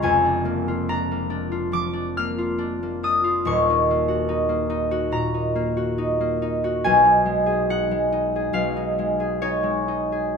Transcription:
\new Staff \with { instrumentName = "Harp" } { \time 4/4 \key ees \minor \tempo 4 = 70 << { <f'' aes'' bes''>4 bes''4 d'''8 f'''4 ees'''8 | des'''2 bes''2 | aes''4 ges''4 f''4 des''4 | } \\ { <f,, f, aes f'>16 d'16 bes16 f'16 d'16 bes16 d'16 f'16 f16 d'16 bes16 f'16 d'16 bes16 d'16 f'16 | <ees,, ees,>16 ees'16 bes16 ges'16 ees'16 bes16 ees'16 ges'16 bes,16 ees'16 bes16 ges'16 ees'16 bes16 ees'16 ges'16 | ces,16 ees'16 aes16 aes'16 ees'16 aes16 ees'16 aes'16 ces,16 ees'16 aes16 aes'16 ees'16 aes16 ees'16 aes'16 | } >> }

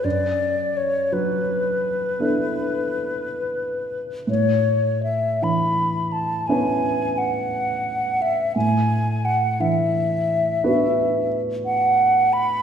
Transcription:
<<
  \new Staff \with { instrumentName = "Flute" } { \time 12/8 \key a \major \tempo 4. = 58 d''4 cis''8 b'1 r8 | cis''4 e''8 b''4 a''8 gis''4 fis''4. e''8 | gis''4 fis''8 e''2~ e''8 r8 fis''4 b''8 | }
  \new Staff \with { instrumentName = "Grand piano" } { \time 12/8 \key a \major fis,4. fis4. <b d' e' a'>2. | a,4. e4. <b cis' e' b'>2. | a,4. e4. <b d' fis' b'>2. | }
>>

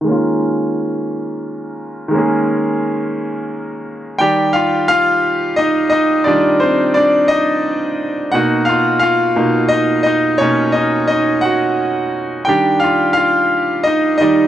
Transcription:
<<
  \new Staff \with { instrumentName = "Grand piano" } { \time 6/8 \key c \phrygian \tempo 4. = 58 <ees aes bes des' f'>2. | <ees aes bes des' aes'>2. | \key ees \major <g' g''>8 <f' f''>8 <f' f''>4 <ees' ees''>8 <ees' ees''>8 | <d' d''>8 <c' c''>8 <d' d''>8 <ees' ees''>4 r8 |
<fis' fis''>8 <f' f''>8 <f' f''>4 <dis' dis''>8 <dis' dis''>8 | <cis' cis''>8 <dis' dis''>8 <dis' dis''>8 <fis' fis''>4 r8 | <g' g''>8 <f' f''>8 <f' f''>4 <ees' ees''>8 <ees' ees''>8 | }
  \new Staff \with { instrumentName = "Grand piano" } { \clef bass \time 6/8 \key c \phrygian r2. | r2. | \key ees \major <ees g d''>2. | <ees g f'>2. |
<b, ais dis'>8 r4 <b, ais dis'>8 r4 | <b, ais dis'>8 r2 r8 | <ees g d'>4. r4 <ees g d''>8 | }
>>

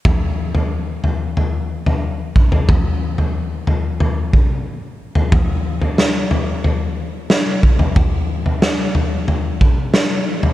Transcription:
\new DrumStaff \with { instrumentName = "Drums" } \drummode { \time 4/4 \tempo 4 = 91 <bd tomfh>8. tomfh16 r8 tomfh8 tomfh8. tomfh16 r8 bd16 tomfh16 | <bd tomfh>8. tomfh16 r8 tomfh8 tomfh8 bd8 r8. tomfh16 | <bd tomfh>8. tomfh16 sn8 tomfh8 tomfh4 sn8 bd16 tomfh16 | <bd tomfh>8. tomfh16 sn8 tomfh8 tomfh8 bd8 sn8. tomfh16 | }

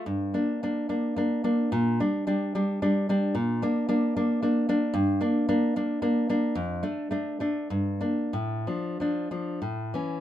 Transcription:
\new Staff \with { instrumentName = "Nylon-string guitar" } { \time 3/4 \key g \dorian \tempo 4 = 109 g,8 <bes d'>8 <bes d'>8 <bes d'>8 <bes d'>8 <bes d'>8 | bes,8 <g d'>8 <g d'>8 <g d'>8 <g d'>8 <g d'>8 | \key d \minor bes,8 <bes d'>8 <bes d'>8 <bes d'>8 <bes d'>8 <bes d'>8 | g,8 <bes d'>8 <bes d'>8 <bes d'>8 <bes d'>8 <bes d'>8 |
f,8 <a d'>8 <a d'>8 <a d'>8 g,8 <bes d'>8 | a,8 <f d'>8 <f d'>8 <f d'>8 a,8 <e cis'>8 | }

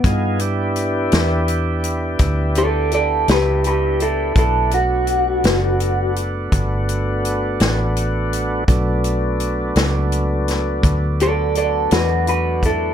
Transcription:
<<
  \new Staff \with { instrumentName = "Clean electric guitar" } { \time 12/8 \key b \minor \tempo 4. = 56 b8 r2. <a' d''>8 <a' d''>8 <g' b'>8 <g' b'>8 <e' a'>8 | <e' a'>8 fis'2 r2. r8 | r2. r8 <a' d''>8 <a' d''>8 <fis' b'>8 <fis' b'>8 <e' a'>8 | }
  \new Staff \with { instrumentName = "Tonewheel organ" } { \time 12/8 \key b \minor <b dis' eis' gis'>8 <b d' e' g'>1~ <b d' e' g'>4. | <a b d' fis'>1. | <fis a b d'>1. | }
  \new Staff \with { instrumentName = "Fingered electric bass" } { \clef bass \time 12/8 \key b \minor g,4. e,4. d,4. cis,4. | b,,4. fis,,4. g,,4. a,,4. | b,,4. cis,4. d,4. e,4. | }
  \new DrumStaff \with { instrumentName = "Drums" } \drummode { \time 12/8 <hh bd>8 hh8 hh8 <hh sn>8 hh8 hh8 <hh bd>8 hh8 hh8 <hh sn>8 hh8 hh8 | <hh bd>8 hh8 hh8 <hh sn>8 hh8 hh8 <hh bd>8 hh8 hh8 <hh sn>8 hh8 hh8 | <hh bd>8 hh8 hh8 <hh sn>8 hh8 <hh sn>8 <hh bd>8 hh8 hh8 <hh sn>8 hh8 <hh bd>8 | }
>>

